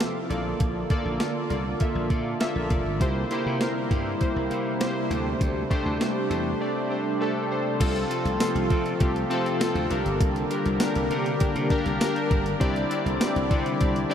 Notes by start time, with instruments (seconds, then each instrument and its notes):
Already playing: analog synth pad C3 F3 E4 A4, synth keys C4 F4 A4 C5 F5 G5 A5 D6
0.00 synth keys E5 C6, snare, closed hi-hat
0.15 synth keys A4 F5
0.29 slap bass A#1, analog synth pad D3 A#3 F4, synth keys A#3 F4 A4 D5, closed hi-hat
0.60 slap bass A#1, kick, closed hi-hat
0.90 synth keys A#3 F4 A4 D5, kick, closed hi-hat
1.05 slap bass A#1
1.20 synth keys A#3 F4 A4 D5, snare, closed hi-hat
1.49 slap bass C2, synth keys A#3 F4 A4 D5, closed hi-hat
1.80 synth keys A#3 F4 A4 E5, kick, closed hi-hat
1.95 slap bass A#1
2.10 slap bass A#2, synth keys A#3 F4 A4 D5, kick, closed hi-hat
2.40 synth keys A#3 F4 A4 E5, snare, closed hi-hat
2.56 slap bass A#1
2.70 slap bass F1, synth keys A#3 F4 A4 D5, kick, closed hi-hat
2.86 slap bass G1
3.00 slap bass C2, analog synth pad C3 G3 A#3 E4, synth keys A#3 E4 G4 C5, kick, closed hi-hat
3.31 synth keys A#3 E4 G4 C5, closed hi-hat
3.46 slap bass C3
3.61 synth keys A#3 E4 G4 A#4, snare, closed hi-hat
3.90 slap bass G2, synth keys A#3 E4 G4 C5, kick, closed hi-hat
4.20 synth keys A#3 E4 G4 C5, kick, closed hi-hat
4.36 slap bass C2
4.50 slap bass C3, synth keys A#3 E4 G4 C5, closed hi-hat
4.80 synth keys A#3 E4 G4 C5, snare, closed hi-hat
5.10 slap bass D2, analog synth pad A3 D4, synth keys A3 D4 G4 C5, closed hi-hat
5.41 slap bass D2, kick, closed hi-hat
5.70 synth keys A3 D4 G4 C5, kick, closed hi-hat
5.86 slap bass D2
6.00 synth keys A3 D4 G4 C5, snare, closed hi-hat
6.30 slap bass E2, synth keys A3 D4 G4 C5, closed hi-hat
6.61 synth keys A3 D4 G4 D5
6.90 synth keys A3 D4 G4 C5
7.20 synth keys A3 D4 G4 A4
7.50 synth keys A3 D4 G4 C5
7.80 slap bass C2, analog synth pad C3 F3 A3 F4, synth keys C4 F4 A4, kick, closed hi-hat, crash
7.96 closed hi-hat
8.10 synth keys C4 F4 A4, closed hi-hat
8.25 slap bass C2, closed hi-hat
8.40 synth keys C4 F4 A4, snare, closed hi-hat, tambourine
8.55 slap bass C2, closed hi-hat
8.70 slap bass C3, synth keys C4 F4 A4, kick, closed hi-hat
8.86 closed hi-hat
9.00 slap bass C2, synth keys C4 F4 G4, kick, closed hi-hat
9.16 closed hi-hat
9.30 synth keys C4 F4 A4, closed hi-hat
9.46 closed hi-hat
9.60 synth keys C4 F4 A4, snare, closed hi-hat, tambourine
9.75 slap bass D2, closed hi-hat
9.90 slap bass C2, analog synth pad D3 G3 A#3 G4, synth keys D4 G4 A#4, closed hi-hat
10.06 slap bass G1, closed hi-hat
10.21 slap bass C2, kick, closed hi-hat
10.36 closed hi-hat
10.50 synth keys D4 G4 A#4, closed hi-hat
10.66 slap bass C2, closed hi-hat
10.80 synth keys D4 G4 A#4, snare, closed hi-hat, tambourine
10.96 slap bass C2, closed hi-hat
11.10 slap bass C3, synth keys D4 G4 A#4, closed hi-hat
11.26 closed hi-hat
11.40 synth keys D4 G4 A#4, muted slap bass stroke, kick, closed hi-hat
11.56 slap bass C3, closed hi-hat
11.70 synth keys D4 G4 A#4 F5, kick, closed hi-hat
11.86 slap bass C2, closed hi-hat
12.00 synth keys D4 G4 A#4 G5, snare, closed hi-hat, tambourine
12.15 synth keys A5, closed hi-hat
12.30 slap bass G1, synth keys D4 G4 A#4 A#5, kick, closed hi-hat
12.46 closed hi-hat
12.60 slap bass C2, analog synth pad D3 G3 C4 E4, synth keys C4 D4 E4 G4 D5, kick, closed hi-hat
12.76 closed hi-hat
12.89 synth keys C4 D4 E4 G4 D5, closed hi-hat
13.06 slap bass C2, closed hi-hat
13.20 synth keys C4 D4 E4 G4 D5, snare, closed hi-hat, tambourine
13.36 slap bass C2, closed hi-hat
13.51 slap bass C3, synth keys C4 D4 E4 G4 D5, kick, closed hi-hat
13.66 closed hi-hat
13.80 slap bass C2, synth keys C4 D4 E4 G4 D5, kick, closed hi-hat
13.96 closed hi-hat
14.10 synth keys C4 D4 E4 G4 D5